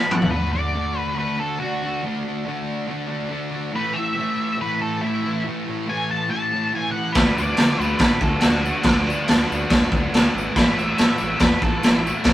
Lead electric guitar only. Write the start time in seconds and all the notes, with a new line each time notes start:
0.12 F#5
0.31 B4
0.53 D5
0.99 B4
1.19 B4
1.40 A4
1.60 F#4
3.76 B4
3.93 E5
4.61 B4
4.82 A4
5.01 E4
5.90 G#5
6.11 A5
6.31 A5
6.75 G#5
6.91 F#5
7.12 B4
7.37 D5
7.82 B4
8.02 B4
8.23 A4
8.40 F#4
10.57 B4
10.77 E5
11.41 B4
11.63 A4
11.84 E4